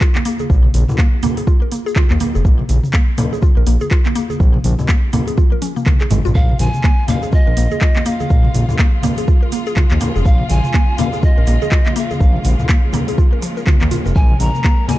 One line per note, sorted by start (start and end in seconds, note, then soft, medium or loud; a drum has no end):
0.01 0.14 F4 loud
0.01 kick loud
0.01 clap loud
0.01 shaker soft
0.15 0.24 A#3 medium
0.15 clap medium
0.15 high conga medium
0.25 0.38 A#3 loud
0.25 open hi-hat medium
0.25 muted conga soft
0.25 shaker loud
0.39 0.49 G#4 medium
0.39 high conga medium
0.39 shaker medium
0.50 0.68 A#1 loud
0.50 kick loud
0.50 shaker soft
0.64 mid tom medium
0.64 muted conga soft
0.74 0.84 A#1 medium
0.74 open hi-hat medium
0.74 high conga loud
0.74 shaker medium
0.88 mid tom medium
0.88 low conga medium
0.88 shaker soft
0.98 1.06 A#3 loud
0.98 kick loud
0.98 clap loud
0.98 muted conga soft
0.98 shaker soft
1.23 1.36 A#3 loud
1.23 open hi-hat medium
1.23 mid tom medium
1.23 high conga medium
1.23 low conga loud
1.23 shaker medium
1.37 1.46 G#4 medium
1.37 open hi-hat soft
1.37 muted conga medium
1.37 shaker soft
1.47 1.61 F4 medium
1.47 kick loud
1.47 shaker soft
1.62 1.71 A#4 medium
1.72 1.85 A#3 medium
1.72 open hi-hat medium
1.72 muted conga soft
1.72 shaker medium
1.86 1.92 G#4 loud
1.86 shaker soft
1.96 2.09 F4 loud
1.96 kick loud
1.96 clap loud
1.96 high conga loud
1.96 shaker soft
2.10 2.17 D#2 medium
2.10 2.20 A#3 medium
2.10 clap medium
2.20 2.34 A#3 loud
2.20 open hi-hat medium
2.20 muted conga medium
2.20 high conga medium
2.20 low conga medium
2.20 shaker medium
2.35 2.42 F1 medium
2.35 2.44 G#4 medium
2.35 shaker medium
2.45 2.63 A#1 loud
2.45 kick loud
2.45 shaker soft
2.59 mid tom medium
2.59 muted conga soft
2.69 2.79 A#1 loud
2.69 open hi-hat medium
2.69 high conga loud
2.69 shaker medium
2.84 mid tom medium
2.84 shaker soft
2.93 3.02 A#3 loud
2.93 kick loud
2.93 clap loud
2.93 muted conga soft
2.93 shaker soft
3.18 3.31 A#3 loud
3.18 open hi-hat medium
3.18 mid tom medium
3.18 high conga medium
3.18 low conga loud
3.18 shaker medium
3.32 3.42 G#4 medium
3.32 muted conga medium
3.32 shaker soft
3.42 3.56 F4 medium
3.42 kick loud
3.42 high conga medium
3.42 shaker soft
3.57 3.64 A#1 medium
3.57 3.66 A#4 medium
3.66 3.77 A#1 loud
3.66 3.80 A#3 medium
3.66 open hi-hat medium
3.66 muted conga soft
3.66 shaker medium
3.81 3.87 G#4 loud
3.81 high conga medium
3.81 shaker soft
3.91 4.04 F4 loud
3.91 kick loud
3.91 clap loud
3.91 shaker soft
4.06 4.14 A#3 medium
4.06 clap medium
4.06 high conga medium
4.15 4.29 A#3 loud
4.15 open hi-hat medium
4.15 muted conga soft
4.15 shaker medium
4.30 4.39 G#4 medium
4.30 high conga medium
4.30 shaker soft
4.40 4.58 A#1 loud
4.40 kick loud
4.40 shaker soft
4.54 mid tom medium
4.54 muted conga medium
4.64 4.74 A#1 loud
4.64 open hi-hat medium
4.64 high conga medium
4.64 shaker medium
4.79 mid tom medium
4.79 low conga medium
4.79 shaker soft
4.89 4.97 A#3 loud
4.89 kick loud
4.89 clap loud
4.89 muted conga soft
4.89 shaker soft
5.13 5.26 A#3 loud
5.13 open hi-hat medium
5.13 mid tom medium
5.13 high conga medium
5.13 low conga loud
5.13 shaker medium
5.27 5.36 G#4 medium
5.27 open hi-hat soft
5.27 muted conga medium
5.27 shaker medium
5.38 5.51 F4 medium
5.38 kick loud
5.38 high tom medium
5.38 shaker soft
5.52 5.61 A#4 medium
5.52 high tom medium
5.62 5.75 C#4 medium
5.62 open hi-hat medium
5.62 high tom medium
5.62 muted conga soft
5.62 shaker medium
5.76 5.85 A#3 medium
5.76 mid tom medium
5.76 shaker medium
5.86 6.00 A#3 medium
5.86 kick loud
5.86 clap loud
5.86 mid tom medium
5.86 high conga loud
5.86 shaker soft
6.01 6.06 G#4 medium
6.01 clap medium
6.11 6.21 G#1 medium
6.11 6.24 G#3 medium
6.11 mid tom loud
6.11 open hi-hat medium
6.11 muted conga medium
6.11 high conga medium
6.11 low conga medium
6.11 shaker medium
6.25 6.32 A#1 medium
6.25 6.31 F4 loud
6.25 mid tom medium
6.25 shaker soft
6.35 6.53 A#1 loud
6.35 14.99 C#3 medium
6.35 14.99 F3 medium
6.35 14.99 G#3 medium
6.35 14.99 A#3 medium
6.35 14.15 F4 medium
6.35 6.61 F5 loud
6.35 kick loud
6.35 shaker soft
6.49 mid tom medium
6.49 muted conga medium
6.59 6.69 A#1 medium
6.59 7.10 G#5 loud
6.59 open hi-hat medium
6.59 high conga loud
6.59 shaker medium
6.74 mid tom medium
6.74 shaker medium
6.84 6.92 A#3 loud
6.84 kick loud
6.84 clap loud
6.84 muted conga soft
6.84 shaker soft
7.08 7.21 A#3 loud
7.08 7.35 F5 loud
7.08 open hi-hat medium
7.08 mid tom medium
7.08 high conga medium
7.08 low conga loud
7.08 shaker medium
7.23 7.32 G#4 medium
7.23 muted conga medium
7.23 shaker medium
7.32 7.47 F4 medium
7.32 8.08 D#5 loud
7.32 kick loud
7.32 high conga medium
7.32 shaker soft
7.47 7.54 A#1 medium
7.47 7.57 A#4 medium
7.57 7.67 A#1 loud
7.57 7.70 A#3 medium
7.57 open hi-hat medium
7.57 muted conga soft
7.57 shaker loud
7.71 7.77 G#4 loud
7.71 high conga medium
7.71 shaker medium
7.81 7.95 F4 loud
7.81 kick loud
7.81 clap loud
7.81 shaker soft
7.96 8.05 A#3 medium
7.96 clap medium
7.96 high conga medium
8.05 8.19 A#3 loud
8.05 8.79 F5 medium
8.05 open hi-hat loud
8.05 muted conga medium
8.05 shaker loud
8.20 8.29 G#4 medium
8.20 high conga medium
8.20 shaker medium
8.30 8.48 A#1 loud
8.30 kick loud
8.30 shaker soft
8.45 mid tom medium
8.45 muted conga medium
8.54 8.65 A#1 medium
8.54 open hi-hat medium
8.54 high conga loud
8.54 shaker loud
8.69 mid tom medium
8.69 low conga medium
8.69 shaker medium
8.79 8.87 A#3 loud
8.79 kick loud
8.79 clap loud
8.79 muted conga soft
8.79 shaker soft
9.03 9.17 A#3 loud
9.03 open hi-hat medium
9.03 mid tom medium
9.03 high conga loud
9.03 low conga loud
9.03 shaker medium
9.17 9.27 G#4 medium
9.17 open hi-hat medium
9.17 muted conga soft
9.17 shaker medium
9.28 9.42 F4 medium
9.28 kick loud
9.28 shaker soft
9.43 9.52 A#4 medium
9.52 9.65 A#3 medium
9.52 open hi-hat loud
9.52 muted conga soft
9.52 shaker loud
9.66 9.72 G#4 loud
9.66 shaker medium
9.76 9.90 F4 loud
9.76 kick loud
9.76 clap loud
9.76 high conga loud
9.76 shaker soft
9.91 9.98 D#2 medium
9.91 10.00 A#3 medium
9.91 clap medium
10.00 10.14 A#3 loud
10.00 open hi-hat loud
10.00 muted conga soft
10.00 high conga loud
10.00 low conga loud
10.00 shaker loud
10.15 10.22 F1 medium
10.15 10.24 G#4 medium
10.15 shaker medium
10.25 10.44 A#1 loud
10.25 10.51 F5 loud
10.25 kick loud
10.25 shaker soft
10.39 mid tom medium
10.39 muted conga soft
10.50 10.60 A#1 medium
10.50 11.01 G#5 loud
10.50 open hi-hat medium
10.50 high conga loud
10.50 shaker medium
10.64 mid tom medium
10.64 shaker medium
10.74 10.82 A#3 loud
10.74 kick loud
10.74 clap loud
10.74 shaker soft
10.98 11.12 A#3 loud
10.98 11.25 F5 loud
10.98 open hi-hat medium
10.98 mid tom medium
10.98 high conga loud
10.98 low conga loud
10.98 shaker loud
11.13 11.22 G#4 medium
11.13 muted conga medium
11.13 shaker medium
11.22 11.37 F4 medium
11.22 11.98 D#5 medium
11.22 kick loud
11.22 high conga medium
11.22 shaker soft
11.37 11.44 A#1 medium
11.37 11.47 A#4 medium
11.47 11.57 A#1 loud
11.47 11.60 A#3 medium
11.47 open hi-hat medium
11.47 muted conga soft
11.47 shaker loud
11.62 11.67 G#4 loud
11.62 high conga medium
11.62 shaker medium
11.71 11.85 F4 loud
11.71 kick loud
11.71 clap loud
11.71 shaker soft
11.86 11.95 A#3 medium
11.86 clap medium
11.86 high conga medium
11.96 12.09 A#3 loud
11.96 12.70 F5 medium
11.96 open hi-hat medium
11.96 muted conga soft
11.96 shaker medium
12.10 12.20 G#4 medium
12.10 high conga medium
12.10 shaker medium
12.20 12.39 A#1 loud
12.20 kick loud
12.20 shaker soft
12.35 mid tom medium
12.35 muted conga medium
12.44 12.55 A#1 medium
12.44 open hi-hat medium
12.44 high conga loud
12.44 shaker loud
12.59 mid tom medium
12.59 low conga medium
12.59 shaker medium
12.69 12.77 A#3 loud
12.69 kick loud
12.69 clap loud
12.69 muted conga soft
12.69 shaker soft
12.93 13.07 A#3 loud
12.93 open hi-hat medium
12.93 mid tom medium
12.93 high conga loud
12.93 low conga loud
12.93 shaker medium
13.08 13.17 G#4 medium
13.08 open hi-hat soft
13.08 muted conga soft
13.08 shaker soft
13.18 13.32 F4 medium
13.18 kick loud
13.18 shaker soft
13.33 13.42 A#4 medium
13.42 13.56 F3 medium
13.42 open hi-hat medium
13.42 muted conga soft
13.42 shaker medium
13.57 13.62 A#4 medium
13.57 shaker medium
13.67 13.80 F4 medium
13.67 kick loud
13.67 clap loud
13.67 high conga loud
13.67 shaker soft
13.81 13.88 D#2 medium
13.81 13.91 A#3 medium
13.81 clap medium
13.91 14.04 F4 medium
13.91 open hi-hat medium
13.91 muted conga soft
13.91 high conga medium
13.91 low conga medium
13.91 shaker loud
14.06 14.13 F1 medium
14.06 14.15 A#4 medium
14.06 shaker medium
14.16 14.34 A#1 loud
14.16 14.99 A#4 medium
14.16 14.42 G#5 loud
14.16 kick loud
14.16 shaker soft
14.30 mid tom medium
14.30 muted conga soft
14.40 14.50 A#1 medium
14.40 14.90 A#5 loud
14.40 open hi-hat medium
14.40 high conga loud
14.40 shaker medium
14.54 mid tom medium
14.54 shaker medium
14.64 14.72 A#3 loud
14.64 kick loud
14.64 clap loud
14.64 muted conga soft
14.64 shaker soft
14.88 14.99 A#3 loud
14.88 14.99 G#5 loud
14.88 open hi-hat medium
14.88 mid tom medium
14.88 high conga medium
14.88 low conga loud
14.88 shaker medium